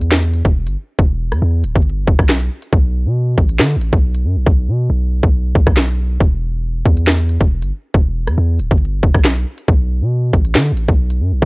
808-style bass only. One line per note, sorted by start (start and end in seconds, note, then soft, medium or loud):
0.00 0.43 E2 loud
0.45 0.68 E1 loud
0.67 0.76 G1 loud
0.99 1.33 E1 loud
1.32 1.42 E2 loud
1.42 1.65 E2 loud
1.64 1.75 D1 loud
1.75 2.06 G1 loud
2.07 2.18 E1 loud
2.19 2.50 B1 loud
2.73 3.07 B1 loud
3.06 3.36 B2 loud
3.38 3.61 A1 loud
3.60 3.78 D3 loud
3.76 3.92 A1 loud
3.93 4.26 B1 loud
4.25 4.38 F#2 loud
4.36 4.46 B1 loud
4.46 4.70 B1 loud
4.68 4.89 B2 loud
4.90 5.22 B1 loud
5.23 5.54 B1 loud
5.55 5.66 B1 loud
5.67 6.18 B1 loud
6.20 6.83 E1 loud
6.86 7.38 E2 loud
7.41 7.64 E1 loud
7.62 7.72 G1 loud
7.94 8.29 E1 loud
8.28 8.37 E2 loud
8.38 8.61 E2 loud
8.60 8.70 D1 loud
8.71 9.02 G1 loud
9.03 9.14 E1 loud
9.15 9.45 B1 loud
9.68 10.03 B1 loud
10.01 10.32 B2 loud
10.33 10.57 A1 loud
10.55 10.73 D3 loud
10.72 10.88 A1 loud
10.88 11.22 B1 loud
11.20 11.33 F#2 loud
11.32 11.42 B1 loud
11.42 11.45 B1 loud